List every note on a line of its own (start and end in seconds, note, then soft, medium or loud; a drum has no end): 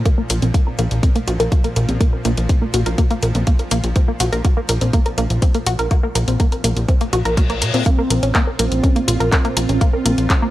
0.00 7.85 A#2 medium
0.00 7.91 F3 medium
0.05 0.09 A#3 loud
0.05 kick loud
0.05 closed hi-hat soft
0.18 0.22 A#3 medium
0.30 0.40 A#1 medium
0.30 0.34 A#4 medium
0.30 closed hi-hat medium
0.42 0.52 A#1 medium
0.42 0.52 C4 medium
0.42 closed hi-hat soft
0.54 0.61 A#3 loud
0.54 kick loud
0.54 closed hi-hat soft
0.67 0.71 A#4 medium
0.79 0.89 A#1 medium
0.79 0.85 A#3 loud
0.79 closed hi-hat medium
0.91 1.01 A#1 medium
0.91 closed hi-hat soft
1.03 1.10 C4 medium
1.03 kick loud
1.03 closed hi-hat soft
1.16 1.19 A#3 loud
1.16 closed hi-hat soft
1.28 1.37 A#1 medium
1.28 1.34 F#4 loud
1.28 closed hi-hat medium
1.40 1.49 A#1 medium
1.40 1.49 A#4 loud
1.40 closed hi-hat soft
1.52 1.56 A#3 loud
1.52 kick loud
1.52 closed hi-hat soft
1.64 1.68 A#3 loud
1.64 closed hi-hat soft
1.76 1.86 A#1 medium
1.76 1.80 A#4 medium
1.76 closed hi-hat medium
1.89 1.98 A#1 medium
1.89 1.98 C4 medium
1.89 closed hi-hat soft
2.00 2.07 A#3 loud
2.00 kick loud
2.00 closed hi-hat soft
2.13 2.17 A#4 medium
2.25 2.35 A#1 medium
2.25 2.32 A#3 medium
2.25 closed hi-hat medium
2.37 2.47 A#1 medium
2.37 closed hi-hat soft
2.49 2.56 C4 medium
2.49 kick loud
2.49 closed hi-hat soft
2.62 2.66 A#3 loud
2.74 2.84 A#1 medium
2.74 2.80 F#4 loud
2.74 closed hi-hat medium
2.86 2.96 A#1 medium
2.86 2.96 A#4 loud
2.86 closed hi-hat soft
2.98 3.02 A#3 loud
2.98 kick loud
2.98 closed hi-hat soft
3.11 3.14 A#3 loud
3.11 closed hi-hat soft
3.23 3.32 A#1 medium
3.23 3.27 A#4 medium
3.23 closed hi-hat medium
3.35 3.44 A#1 medium
3.35 3.45 C4 medium
3.35 closed hi-hat soft
3.47 3.54 A#3 loud
3.47 kick loud
3.47 closed hi-hat soft
3.59 3.63 A#4 medium
3.59 closed hi-hat soft
3.71 3.81 A#1 medium
3.71 3.78 A#3 loud
3.71 closed hi-hat medium
3.84 3.93 A#1 medium
3.84 closed hi-hat soft
3.96 4.02 C4 medium
3.96 kick loud
3.96 closed hi-hat soft
4.08 4.12 A#3 medium
4.20 4.30 A#1 medium
4.20 4.27 F#4 medium
4.20 closed hi-hat medium
4.33 4.42 A#1 medium
4.33 4.42 A#4 loud
4.33 closed hi-hat soft
4.45 4.49 A#3 medium
4.45 kick loud
4.45 closed hi-hat soft
4.57 4.61 A#3 loud
4.69 4.79 A#1 medium
4.69 4.73 A#4 medium
4.69 closed hi-hat medium
4.81 4.91 A#1 medium
4.81 4.91 C4 medium
4.81 closed hi-hat soft
4.93 5.00 A#3 loud
4.93 kick loud
4.93 closed hi-hat soft
5.06 5.10 A#4 medium
5.06 closed hi-hat soft
5.18 5.28 A#1 medium
5.18 5.24 A#3 loud
5.18 closed hi-hat medium
5.30 5.40 A#1 medium
5.30 closed hi-hat soft
5.42 5.49 C4 medium
5.42 kick loud
5.42 closed hi-hat soft
5.54 5.58 A#3 loud
5.54 closed hi-hat soft
5.66 5.76 A#1 medium
5.66 5.73 F#4 loud
5.66 closed hi-hat medium
5.79 5.88 A#1 medium
5.79 5.88 A#4 loud
5.79 closed hi-hat soft
5.91 5.95 A#3 loud
5.91 kick loud
5.91 closed hi-hat soft
6.03 6.07 A#3 loud
6.15 6.25 A#1 medium
6.15 6.19 A#4 medium
6.15 closed hi-hat medium
6.28 6.37 A#1 medium
6.28 6.37 C4 medium
6.28 closed hi-hat soft
6.40 6.46 A#3 loud
6.40 kick loud
6.40 closed hi-hat soft
6.52 6.56 A#4 medium
6.52 closed hi-hat soft
6.64 6.74 A#1 medium
6.64 6.71 A#3 loud
6.64 closed hi-hat medium
6.76 6.86 A#1 medium
6.76 closed hi-hat soft
6.88 6.95 C4 medium
6.88 kick loud
6.88 closed hi-hat soft
6.88 reverse cymbal medium
7.01 7.05 A#3 loud
7.01 closed hi-hat soft
7.13 7.23 A#1 medium
7.13 7.19 F#4 loud
7.13 closed hi-hat medium
7.25 7.63 A#1 medium
7.25 7.35 A#4 medium
7.25 closed hi-hat soft
7.37 7.41 A#3 loud
7.37 kick loud
7.37 closed hi-hat soft
7.50 7.54 A#3 loud
7.50 closed hi-hat soft
7.61 7.71 A#2 medium
7.61 7.66 A#4 medium
7.61 closed hi-hat medium
7.74 7.84 A#2 medium
7.74 7.84 C4 medium
7.74 closed hi-hat soft
7.86 10.51 A#2 medium
7.86 7.90 A#3 loud
7.86 8.50 C4 loud
7.86 10.51 F4 medium
7.86 kick loud
7.86 closed hi-hat soft
7.98 8.02 A#3 loud
8.10 8.20 A#1 medium
8.10 8.14 A#4 medium
8.10 closed hi-hat medium
8.23 8.32 A#1 medium
8.23 8.32 C#4 medium
8.23 closed hi-hat soft
8.35 8.41 A#3 loud
8.35 kick loud
8.35 clap loud
8.35 closed hi-hat soft
8.47 8.51 A#4 medium
8.59 8.69 A#1 medium
8.59 8.66 A#3 loud
8.59 9.23 C4 medium
8.59 closed hi-hat loud
8.72 8.81 A#1 medium
8.72 closed hi-hat soft
8.83 8.90 C#4 medium
8.83 kick loud
8.83 closed hi-hat soft
8.96 9.00 A#3 loud
8.96 closed hi-hat soft
9.08 9.18 A#1 medium
9.08 9.14 F4 loud
9.08 closed hi-hat loud
9.20 9.30 A#1 medium
9.20 9.30 A#4 loud
9.20 closed hi-hat soft
9.32 9.36 A#3 loud
9.32 10.51 C4 loud
9.32 kick loud
9.32 clap loud
9.32 closed hi-hat soft
9.45 9.48 A#3 loud
9.45 closed hi-hat soft
9.57 9.67 A#1 medium
9.57 9.61 A#4 medium
9.57 closed hi-hat loud
9.69 9.79 A#1 medium
9.69 9.79 C#4 medium
9.69 closed hi-hat soft
9.81 9.88 A#3 loud
9.81 kick loud
9.81 closed hi-hat soft
9.93 9.97 A#4 medium
10.05 10.15 A#1 medium
10.05 10.12 A#3 loud
10.05 closed hi-hat loud
10.18 10.27 A#1 medium
10.18 closed hi-hat soft
10.30 10.36 C#4 medium
10.30 kick loud
10.30 clap loud
10.30 closed hi-hat soft
10.42 10.46 A#3 loud